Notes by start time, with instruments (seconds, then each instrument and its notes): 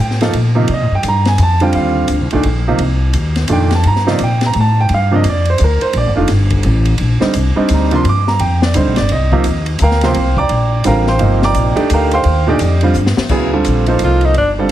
Already playing: upright bass A2
0.01 grand piano G5
0.11 snare
0.21 grand piano F3 A#3 D#4 A4, snare, ride
0.33 upright bass A#2, ride
0.55 grand piano C3 F3 A#3 D#4
0.68 upright bass C3, grand piano D5, ride
0.74 grand piano D#5
0.81 upright bass A#2
0.91 upright bass G2, grand piano G5
1.03 upright bass G2, hi-hat pedal, ride
1.08 grand piano A#5
1.25 grand piano G#5, snare, ride
1.38 upright bass F2, hi-hat pedal, ride
1.43 grand piano A5
1.60 grand piano D3 G3 C4 F4 G5, ride
1.73 upright bass D#2, grand piano F5, ride
2.08 upright bass D2, hi-hat pedal, ride
2.20 upright bass C2
2.31 upright bass A#1, grand piano A#2 D#3 A3 D4, ride
2.43 upright bass A#1, ride
2.68 grand piano C3 F3 A#3 D#4
2.78 upright bass C2, ride
3.13 upright bass D#2, hi-hat pedal, ride
3.36 snare, ride
3.48 upright bass F2, grand piano A#2 D#3 A3 D4, hi-hat pedal, ride
3.52 grand piano G5
3.71 grand piano A5, snare, ride
3.83 upright bass G2, grand piano A#5, ride
3.96 snare
4.07 grand piano C3 F3 A#3 D#4 D5, snare
4.19 upright bass A#2, hi-hat pedal, ride
4.24 grand piano G5
4.41 snare, ride
4.46 grand piano A#5
4.53 upright bass A2, ride
4.60 grand piano A5
4.81 grand piano G5
4.89 upright bass G2, ride
4.94 grand piano F5
5.11 grand piano C3 F3 A#3 D4
5.16 grand piano D#5
5.24 upright bass F2, hi-hat pedal, ride
5.29 grand piano D5
5.45 ride
5.50 grand piano C5
5.58 upright bass D2, hi-hat pedal, ride
5.64 grand piano A#4
5.81 grand piano C5, ride
5.93 upright bass A#1, ride
5.98 grand piano D5
6.06 upright bass G1
6.16 upright bass F1, grand piano D#3 A3 D4 F4
6.28 upright bass G1, snare, hi-hat pedal, ride
6.50 kick, ride
6.63 upright bass A1, ride
6.85 ride
6.98 upright bass A#1, ride
7.20 grand piano D3 G3 C4 D#4, muted upright bass stroke, snare
7.34 upright bass C2, hi-hat pedal, ride
7.56 grand piano G3 C4 D4 D#4
7.69 upright bass D2, hi-hat pedal, ride
7.74 grand piano A#5
7.91 grand piano C3 F3 A#3 D4, ride
7.95 grand piano C6
8.04 upright bass G2, ride
8.09 grand piano D6
8.27 grand piano A#5, snare
8.39 upright bass F2, grand piano G5, ride
8.62 grand piano D5, snare
8.74 upright bass D2, grand piano D3 G3 C4 D#4 C5, hi-hat pedal, ride
8.87 upright bass A#1
8.96 upright bass G1, grand piano D5, snare, ride
9.09 upright bass C2, grand piano D#5, ride
9.32 grand piano C3 F3 A#3 D#4, kick
9.44 upright bass D#2, hi-hat pedal, ride
9.66 ride
9.79 upright bass D2, grand piano A#5, hi-hat pedal, ride
9.83 grand piano A#4 F5 G5
9.91 snare
10.01 grand piano C3 F3 A#3 C4 C6, snare, ride
10.06 grand piano C5 F5 G5
10.14 upright bass C2, ride
10.37 grand piano D5 G5 A#5 D6, kick
10.49 upright bass A#1, ride
10.84 upright bass A1, grand piano D3 G3 C4 F4 A#4 F5 G5 A#5, hi-hat pedal, ride
11.07 grand piano C5 F5 G5 C6, snare
11.19 upright bass G1, grand piano C3 F3 A#3 D#4, ride
11.42 grand piano D5 G5 A#5 D6, snare
11.54 upright bass A#1, hi-hat pedal, ride
11.76 grand piano A3 D4 D#4 G4, ride
11.90 upright bass D2, grand piano A#4, hi-hat pedal, ride
11.94 grand piano F5 G5 A#5
12.11 grand piano C5 F5 G5 C6, ride
12.24 upright bass D#2, ride
12.47 grand piano A#2 D#3 A3 D4 G4 D5 D#5 G5
12.59 upright bass F2, hi-hat pedal, ride
12.81 grand piano D3 G3 C4 F4, ride
12.94 upright bass G2, hi-hat pedal
13.06 snare
13.17 muted upright bass stroke, snare
13.29 upright bass D2, grand piano C#3 F#3 B3 E4 G#4, kick, crash
13.53 grand piano D3 G3 C4 F4 A4
13.65 upright bass A#1, hi-hat pedal, ride
13.86 grand piano F3 A#3 D#4 A4 C5, ride
13.99 upright bass C2, hi-hat pedal, ride
14.04 tenor saxophone F4
14.21 tenor saxophone D#4, ride
14.34 upright bass G1, tenor saxophone D4, ride
14.59 grand piano D3 G3 C4 F4 A4